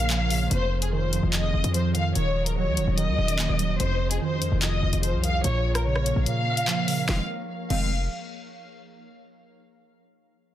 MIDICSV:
0, 0, Header, 1, 6, 480
1, 0, Start_track
1, 0, Tempo, 410959
1, 597, Time_signature, 4, 2, 24, 8
1, 12321, End_track
2, 0, Start_track
2, 0, Title_t, "Violin section"
2, 0, Program_c, 0, 48
2, 0, Note_on_c, 0, 77, 95
2, 550, Note_off_c, 0, 77, 0
2, 596, Note_on_c, 0, 72, 105
2, 935, Note_off_c, 0, 72, 0
2, 960, Note_on_c, 0, 68, 76
2, 1049, Note_off_c, 0, 68, 0
2, 1078, Note_on_c, 0, 72, 80
2, 1529, Note_off_c, 0, 72, 0
2, 1553, Note_on_c, 0, 75, 89
2, 2006, Note_off_c, 0, 75, 0
2, 2035, Note_on_c, 0, 72, 83
2, 2217, Note_off_c, 0, 72, 0
2, 2277, Note_on_c, 0, 77, 92
2, 2459, Note_off_c, 0, 77, 0
2, 2515, Note_on_c, 0, 73, 100
2, 2854, Note_off_c, 0, 73, 0
2, 2879, Note_on_c, 0, 70, 83
2, 2969, Note_off_c, 0, 70, 0
2, 3000, Note_on_c, 0, 73, 89
2, 3450, Note_off_c, 0, 73, 0
2, 3478, Note_on_c, 0, 75, 93
2, 4391, Note_off_c, 0, 75, 0
2, 4437, Note_on_c, 0, 72, 103
2, 4775, Note_off_c, 0, 72, 0
2, 4798, Note_on_c, 0, 68, 78
2, 4888, Note_off_c, 0, 68, 0
2, 4920, Note_on_c, 0, 72, 85
2, 5370, Note_off_c, 0, 72, 0
2, 5397, Note_on_c, 0, 75, 86
2, 5848, Note_off_c, 0, 75, 0
2, 5878, Note_on_c, 0, 72, 76
2, 6059, Note_off_c, 0, 72, 0
2, 6121, Note_on_c, 0, 77, 91
2, 6301, Note_off_c, 0, 77, 0
2, 6358, Note_on_c, 0, 73, 100
2, 6696, Note_off_c, 0, 73, 0
2, 6716, Note_on_c, 0, 70, 88
2, 6807, Note_off_c, 0, 70, 0
2, 6835, Note_on_c, 0, 73, 87
2, 7287, Note_off_c, 0, 73, 0
2, 7318, Note_on_c, 0, 77, 96
2, 8231, Note_off_c, 0, 77, 0
2, 8278, Note_on_c, 0, 77, 83
2, 8411, Note_off_c, 0, 77, 0
2, 8996, Note_on_c, 0, 77, 88
2, 9220, Note_off_c, 0, 77, 0
2, 12321, End_track
3, 0, Start_track
3, 0, Title_t, "Ambient pad"
3, 0, Program_c, 1, 92
3, 0, Note_on_c, 1, 58, 87
3, 0, Note_on_c, 1, 70, 82
3, 0, Note_on_c, 1, 73, 80
3, 0, Note_on_c, 1, 77, 96
3, 578, Note_off_c, 1, 58, 0
3, 578, Note_off_c, 1, 70, 0
3, 578, Note_off_c, 1, 73, 0
3, 578, Note_off_c, 1, 77, 0
3, 595, Note_on_c, 1, 53, 86
3, 595, Note_on_c, 1, 65, 79
3, 595, Note_on_c, 1, 68, 83
3, 596, Note_on_c, 1, 75, 95
3, 2497, Note_off_c, 1, 53, 0
3, 2497, Note_off_c, 1, 65, 0
3, 2497, Note_off_c, 1, 68, 0
3, 2516, Note_on_c, 1, 61, 78
3, 2516, Note_on_c, 1, 66, 79
3, 2517, Note_on_c, 1, 51, 87
3, 4417, Note_off_c, 1, 61, 0
3, 4417, Note_off_c, 1, 66, 0
3, 4418, Note_off_c, 1, 51, 0
3, 4435, Note_on_c, 1, 53, 89
3, 4436, Note_on_c, 1, 65, 82
3, 4436, Note_on_c, 1, 68, 81
3, 6310, Note_off_c, 1, 75, 0
3, 6337, Note_off_c, 1, 53, 0
3, 6337, Note_off_c, 1, 65, 0
3, 6337, Note_off_c, 1, 68, 0
3, 6356, Note_on_c, 1, 58, 86
3, 6356, Note_on_c, 1, 70, 79
3, 6356, Note_on_c, 1, 73, 80
3, 6357, Note_on_c, 1, 77, 98
3, 8257, Note_off_c, 1, 73, 0
3, 8258, Note_off_c, 1, 58, 0
3, 8258, Note_off_c, 1, 70, 0
3, 8258, Note_off_c, 1, 77, 0
3, 12321, End_track
4, 0, Start_track
4, 0, Title_t, "Synth keys"
4, 0, Program_c, 2, 88
4, 0, Control_c, 2, 64, 127
4, 0, Note_on_c, 2, 46, 80
4, 0, Note_on_c, 2, 49, 87
4, 107, Note_on_c, 2, 53, 87
4, 344, Note_off_c, 2, 49, 0
4, 358, Note_on_c, 2, 49, 72
4, 592, Note_off_c, 2, 53, 0
4, 597, Note_off_c, 2, 49, 0
4, 599, Note_off_c, 2, 46, 0
4, 606, Note_on_c, 2, 41, 92
4, 612, Control_c, 2, 64, 0
4, 787, Control_c, 2, 64, 127
4, 817, Note_off_c, 2, 41, 0
4, 831, Note_on_c, 2, 41, 74
4, 1076, Note_on_c, 2, 51, 86
4, 1309, Note_off_c, 2, 41, 0
4, 1323, Note_on_c, 2, 41, 85
4, 1542, Note_off_c, 2, 41, 0
4, 1556, Note_on_c, 2, 41, 93
4, 1774, Note_off_c, 2, 41, 0
4, 1788, Note_on_c, 2, 41, 77
4, 2036, Note_on_c, 2, 53, 90
4, 2260, Note_off_c, 2, 51, 0
4, 2274, Note_on_c, 2, 51, 83
4, 2500, Note_off_c, 2, 51, 0
4, 2512, Note_off_c, 2, 41, 0
4, 2514, Note_on_c, 2, 51, 93
4, 2516, Note_off_c, 2, 53, 0
4, 2533, Control_c, 2, 64, 0
4, 2741, Control_c, 2, 64, 127
4, 2749, Note_off_c, 2, 51, 0
4, 2763, Note_on_c, 2, 51, 81
4, 3000, Note_on_c, 2, 54, 89
4, 3224, Note_off_c, 2, 51, 0
4, 3238, Note_on_c, 2, 51, 78
4, 3461, Note_off_c, 2, 51, 0
4, 3475, Note_on_c, 2, 51, 96
4, 3703, Note_off_c, 2, 51, 0
4, 3717, Note_on_c, 2, 51, 81
4, 3949, Note_on_c, 2, 58, 95
4, 4187, Note_off_c, 2, 54, 0
4, 4201, Note_on_c, 2, 54, 78
4, 4433, Note_off_c, 2, 58, 0
4, 4437, Note_off_c, 2, 51, 0
4, 4439, Note_off_c, 2, 54, 0
4, 4442, Note_on_c, 2, 41, 99
4, 4451, Control_c, 2, 64, 0
4, 4661, Note_off_c, 2, 41, 0
4, 4675, Note_on_c, 2, 41, 71
4, 4688, Control_c, 2, 64, 127
4, 4922, Note_on_c, 2, 51, 83
4, 5138, Note_off_c, 2, 41, 0
4, 5152, Note_on_c, 2, 41, 85
4, 5388, Note_off_c, 2, 41, 0
4, 5402, Note_on_c, 2, 41, 86
4, 5628, Note_off_c, 2, 41, 0
4, 5642, Note_on_c, 2, 41, 77
4, 5877, Note_on_c, 2, 53, 91
4, 6102, Note_off_c, 2, 51, 0
4, 6116, Note_on_c, 2, 51, 82
4, 6356, Note_off_c, 2, 51, 0
4, 6357, Note_off_c, 2, 53, 0
4, 6357, Note_on_c, 2, 46, 103
4, 6359, Note_off_c, 2, 41, 0
4, 6374, Control_c, 2, 64, 0
4, 6565, Control_c, 2, 64, 127
4, 6582, Note_off_c, 2, 46, 0
4, 6596, Note_on_c, 2, 46, 84
4, 6834, Note_on_c, 2, 49, 83
4, 7058, Note_off_c, 2, 46, 0
4, 7072, Note_on_c, 2, 46, 80
4, 7302, Note_off_c, 2, 46, 0
4, 7316, Note_on_c, 2, 46, 95
4, 7546, Note_off_c, 2, 46, 0
4, 7560, Note_on_c, 2, 46, 78
4, 7785, Note_on_c, 2, 53, 86
4, 8023, Note_off_c, 2, 49, 0
4, 8037, Note_on_c, 2, 49, 72
4, 8262, Note_off_c, 2, 53, 0
4, 8276, Note_on_c, 2, 51, 84
4, 8276, Note_on_c, 2, 53, 82
4, 8276, Note_on_c, 2, 56, 80
4, 8277, Note_off_c, 2, 49, 0
4, 8277, Note_on_c, 2, 60, 93
4, 8278, Note_off_c, 2, 46, 0
4, 8289, Control_c, 2, 64, 0
4, 8411, Note_off_c, 2, 51, 0
4, 8411, Note_off_c, 2, 53, 0
4, 8411, Note_off_c, 2, 56, 0
4, 8411, Note_off_c, 2, 60, 0
4, 8997, Note_on_c, 2, 51, 85
4, 8998, Note_on_c, 2, 53, 79
4, 8998, Note_on_c, 2, 56, 78
4, 8998, Note_on_c, 2, 60, 97
4, 9220, Note_off_c, 2, 51, 0
4, 9221, Note_off_c, 2, 53, 0
4, 9221, Note_off_c, 2, 56, 0
4, 9221, Note_off_c, 2, 60, 0
4, 12321, End_track
5, 0, Start_track
5, 0, Title_t, "808-style bass"
5, 0, Program_c, 3, 38
5, 0, Note_on_c, 3, 34, 110
5, 568, Note_off_c, 3, 34, 0
5, 596, Note_on_c, 3, 29, 117
5, 1403, Note_off_c, 3, 29, 0
5, 1437, Note_on_c, 3, 29, 106
5, 1782, Note_off_c, 3, 29, 0
5, 1796, Note_on_c, 3, 29, 106
5, 1909, Note_off_c, 3, 29, 0
5, 1916, Note_on_c, 3, 41, 105
5, 2492, Note_off_c, 3, 41, 0
5, 2517, Note_on_c, 3, 27, 109
5, 3117, Note_on_c, 3, 39, 96
5, 3134, Note_off_c, 3, 27, 0
5, 3237, Note_on_c, 3, 27, 98
5, 3254, Note_off_c, 3, 39, 0
5, 3351, Note_off_c, 3, 27, 0
5, 3357, Note_on_c, 3, 27, 110
5, 3597, Note_on_c, 3, 39, 99
5, 3614, Note_off_c, 3, 27, 0
5, 3711, Note_off_c, 3, 39, 0
5, 3717, Note_on_c, 3, 27, 108
5, 4062, Note_off_c, 3, 27, 0
5, 4077, Note_on_c, 3, 27, 98
5, 4423, Note_off_c, 3, 27, 0
5, 4438, Note_on_c, 3, 29, 110
5, 4898, Note_off_c, 3, 29, 0
5, 5277, Note_on_c, 3, 29, 107
5, 5623, Note_off_c, 3, 29, 0
5, 5637, Note_on_c, 3, 29, 108
5, 5752, Note_off_c, 3, 29, 0
5, 5758, Note_on_c, 3, 29, 105
5, 5997, Note_on_c, 3, 36, 96
5, 6014, Note_off_c, 3, 29, 0
5, 6339, Note_off_c, 3, 36, 0
5, 6356, Note_on_c, 3, 34, 116
5, 7163, Note_off_c, 3, 34, 0
5, 7196, Note_on_c, 3, 34, 108
5, 7316, Note_off_c, 3, 34, 0
5, 8277, Note_on_c, 3, 29, 113
5, 8411, Note_off_c, 3, 29, 0
5, 8996, Note_on_c, 3, 29, 107
5, 9443, Note_off_c, 3, 29, 0
5, 12321, End_track
6, 0, Start_track
6, 0, Title_t, "Drums"
6, 117, Note_on_c, 9, 39, 125
6, 234, Note_off_c, 9, 39, 0
6, 356, Note_on_c, 9, 46, 76
6, 472, Note_off_c, 9, 46, 0
6, 596, Note_on_c, 9, 42, 80
6, 713, Note_off_c, 9, 42, 0
6, 957, Note_on_c, 9, 42, 84
6, 1074, Note_off_c, 9, 42, 0
6, 1318, Note_on_c, 9, 42, 76
6, 1434, Note_off_c, 9, 42, 0
6, 1555, Note_on_c, 9, 39, 118
6, 1555, Note_on_c, 9, 42, 88
6, 1672, Note_off_c, 9, 39, 0
6, 1672, Note_off_c, 9, 42, 0
6, 1916, Note_on_c, 9, 42, 86
6, 2033, Note_off_c, 9, 42, 0
6, 2037, Note_on_c, 9, 42, 76
6, 2153, Note_off_c, 9, 42, 0
6, 2274, Note_on_c, 9, 42, 97
6, 2391, Note_off_c, 9, 42, 0
6, 2517, Note_on_c, 9, 42, 77
6, 2633, Note_off_c, 9, 42, 0
6, 2876, Note_on_c, 9, 42, 82
6, 2993, Note_off_c, 9, 42, 0
6, 3237, Note_on_c, 9, 42, 77
6, 3354, Note_off_c, 9, 42, 0
6, 3476, Note_on_c, 9, 42, 77
6, 3593, Note_off_c, 9, 42, 0
6, 3835, Note_on_c, 9, 42, 89
6, 3952, Note_off_c, 9, 42, 0
6, 3957, Note_on_c, 9, 39, 121
6, 4073, Note_off_c, 9, 39, 0
6, 4195, Note_on_c, 9, 42, 106
6, 4312, Note_off_c, 9, 42, 0
6, 4437, Note_on_c, 9, 42, 78
6, 4554, Note_off_c, 9, 42, 0
6, 4797, Note_on_c, 9, 42, 83
6, 4914, Note_off_c, 9, 42, 0
6, 5158, Note_on_c, 9, 42, 74
6, 5275, Note_off_c, 9, 42, 0
6, 5397, Note_on_c, 9, 39, 121
6, 5397, Note_on_c, 9, 42, 82
6, 5514, Note_off_c, 9, 39, 0
6, 5514, Note_off_c, 9, 42, 0
6, 5757, Note_on_c, 9, 42, 89
6, 5874, Note_off_c, 9, 42, 0
6, 5877, Note_on_c, 9, 42, 76
6, 5994, Note_off_c, 9, 42, 0
6, 6116, Note_on_c, 9, 42, 95
6, 6232, Note_off_c, 9, 42, 0
6, 6357, Note_on_c, 9, 42, 78
6, 6473, Note_off_c, 9, 42, 0
6, 6716, Note_on_c, 9, 37, 94
6, 6717, Note_on_c, 9, 42, 83
6, 6833, Note_off_c, 9, 37, 0
6, 6834, Note_off_c, 9, 42, 0
6, 6957, Note_on_c, 9, 37, 72
6, 7073, Note_off_c, 9, 37, 0
6, 7078, Note_on_c, 9, 42, 76
6, 7195, Note_off_c, 9, 42, 0
6, 7316, Note_on_c, 9, 42, 79
6, 7433, Note_off_c, 9, 42, 0
6, 7676, Note_on_c, 9, 42, 90
6, 7793, Note_off_c, 9, 42, 0
6, 7797, Note_on_c, 9, 39, 119
6, 7913, Note_off_c, 9, 39, 0
6, 8036, Note_on_c, 9, 46, 76
6, 8152, Note_off_c, 9, 46, 0
6, 8276, Note_on_c, 9, 38, 86
6, 8393, Note_off_c, 9, 38, 0
6, 8997, Note_on_c, 9, 49, 90
6, 9113, Note_off_c, 9, 49, 0
6, 12321, End_track
0, 0, End_of_file